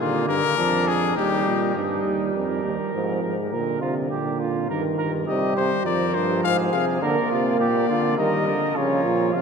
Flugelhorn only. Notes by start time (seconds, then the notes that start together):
0.00 A#3
0.58 D4
1.16 D#4
1.76 D#4
2.35 A#4
3.52 A#4
3.82 F4
4.11 G4
4.40 F4
4.70 A#4
4.98 A#4
5.28 G4
5.86 A#4
6.45 G#4
7.02 A#4
7.31 F4
7.60 G4
7.89 F4
8.18 A#4
8.47 A#4
8.76 F4